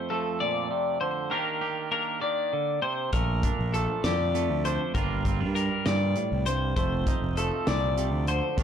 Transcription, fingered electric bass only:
3.13 3.40 A#1 medium
3.59 3.86 A#1 medium
4.04 4.50 F2 medium
4.50 4.77 D2 medium
4.94 5.42 G1 medium
5.41 5.68 G2 medium
5.86 6.14 G2 medium
6.32 6.73 C2 medium
6.76 7.04 F1 medium
7.22 7.50 F1 medium
7.67 8.13 C2 medium
8.13 8.40 D2 medium
8.57 8.63 D#2 medium

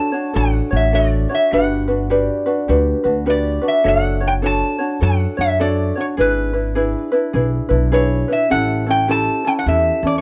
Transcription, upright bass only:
0.36 0.59 A1 loud
0.72 1.24 A1 medium
1.53 2.28 G1 medium
2.69 2.93 D2 medium
3.05 3.57 D2 medium
3.85 4.61 F#1 medium
5.02 5.25 F#2 medium
5.39 5.90 F#2 medium
6.18 6.94 G#1 medium
7.34 7.58 B1 medium
7.71 8.22 B1 medium
8.51 9.27 A1 medium
9.66 9.90 E2 medium
10.03 10.21 E2 medium

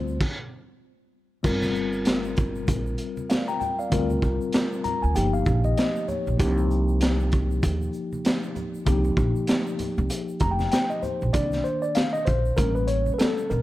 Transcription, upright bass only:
0.00 0.19 D2 medium
1.44 2.68 G1 medium
2.68 2.93 A#1 medium
3.92 4.17 D2 loud
4.23 4.37 C2 medium
5.04 5.13 D2 medium
5.16 5.41 G1 loud
5.47 5.71 A#1 medium
6.27 6.37 A#1 medium
6.40 7.59 C2 loud
7.63 7.88 D#2 medium
8.87 9.12 C2 loud
9.17 9.32 A#1 medium
9.98 10.08 C2 loud
10.41 10.66 F1 medium
11.22 11.32 A#1 medium
11.34 11.59 C2 medium
12.28 12.52 A#1 medium
12.58 13.08 A1 medium
13.51 13.62 A#1 medium

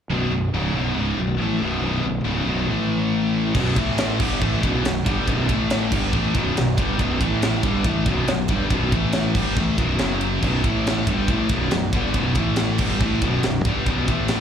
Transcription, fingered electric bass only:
0.10 0.30 B0 medium
0.30 0.51 B0 medium
0.52 0.73 C#1 medium
0.74 0.95 B0 medium
0.96 1.16 C#1 medium
1.17 1.38 B0 medium
1.38 1.59 A1 medium
1.59 1.80 B0 medium
1.82 2.02 B0 loud
2.04 2.23 B0 medium
2.24 2.45 C#1 medium
2.46 2.67 B0 medium
2.67 3.51 A1 medium
3.55 3.75 B0 loud
3.76 4.17 A1 medium
4.20 4.40 G1 medium
4.41 4.62 A1 loud
4.63 4.83 B0 medium
4.84 5.04 B0 medium
5.06 5.26 G1 medium
5.28 5.48 B0 loud
5.49 5.89 A1 medium
5.92 6.12 G1 loud
6.13 6.33 A1 medium
6.35 6.55 B0 medium
6.56 6.76 B0 medium
6.78 6.98 G1 medium
6.99 7.19 B0 loud
7.20 7.61 A1 medium
7.63 7.84 G1 medium
7.85 8.05 A1 medium
8.06 8.26 B0 medium
8.27 8.48 B0 medium
8.49 8.70 G1 medium
8.70 8.91 B0 loud
8.92 9.32 A1 medium
9.36 9.56 G1 medium
9.56 9.77 A1 medium
9.77 9.98 B0 medium
10.00 10.40 F#1 medium
10.42 10.63 B0 loud
10.65 11.05 A1 medium
11.07 11.27 G1 medium
11.28 11.48 A1 medium
11.49 11.70 B0 loud
11.73 11.92 B0 medium
11.93 12.13 G1 medium
12.14 12.35 B0 loud
12.35 12.76 A1 loud
12.79 12.99 G1 loud
13.00 13.20 A1 medium
13.22 13.42 B0 loud
13.45 13.64 B0 medium
13.65 13.85 G1 medium
13.87 14.07 B0 loud
14.09 14.40 A1 medium

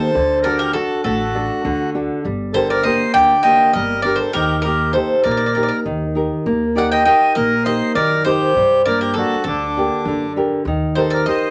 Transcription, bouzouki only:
0.00 0.47 C5 medium
0.44 0.59 D5 medium
0.59 0.73 A#4 medium
0.73 1.02 A4 medium
1.04 1.91 A4 medium
2.54 2.69 C5 medium
2.70 2.83 D5 medium
2.83 3.12 D#5 medium
3.14 3.42 G5 loud
3.43 3.72 G5 loud
3.73 4.02 D#5 medium
4.02 4.18 D5 medium
4.16 4.32 C5 medium
4.33 4.61 A#4 loud
4.62 4.93 A#4 medium
4.93 5.22 C5 medium
5.24 5.30 D5 medium
5.31 5.36 D5 medium
5.37 5.45 D5 medium
5.46 5.54 D5 medium
5.55 5.62 D5 medium
5.63 5.67 D5 medium
5.69 5.76 D5 medium
6.78 6.91 F#5 medium
6.92 7.04 G5 medium
7.05 7.35 G5 medium
7.35 7.63 D#5 medium
7.66 7.95 D#5 medium
7.95 8.23 D5 medium
8.25 8.81 C5 medium
8.85 9.00 D5 medium
9.01 9.13 A#4 medium
9.14 9.43 A4 medium
9.44 10.31 A4 medium
10.95 11.10 C5 medium
11.10 11.25 D5 medium
11.26 11.50 D#5 medium

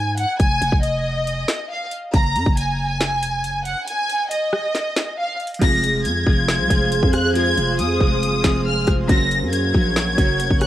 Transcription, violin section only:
0.00 0.14 G#5 medium
0.18 0.36 F#5 medium
0.40 0.81 G#5 loud
0.83 1.66 D#5 medium
1.71 1.89 F5 medium
2.14 2.55 A#5 loud
2.57 3.62 G#5 medium
3.65 3.84 F#5 medium
3.88 4.28 G#5 loud
4.30 5.14 D#5 medium
5.18 5.37 F5 medium
5.62 6.03 A#6 loud
6.05 7.10 G#6 medium
7.14 7.32 F#6 loud
7.36 7.76 G#6 loud
7.79 8.62 D#6 medium
8.67 8.85 F6 medium
9.09 9.50 A#6 loud
9.52 10.57 G#6 medium
10.61 10.67 F#6 medium

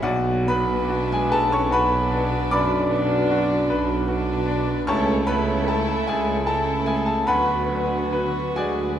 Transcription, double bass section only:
0.01 1.15 B1 medium
1.29 2.36 B1 medium
2.50 3.55 B1 medium
3.70 4.73 B1 medium
4.88 5.93 C#2 medium
6.07 7.12 C#2 medium
7.27 8.40 D2 medium
8.56 8.99 D2 medium

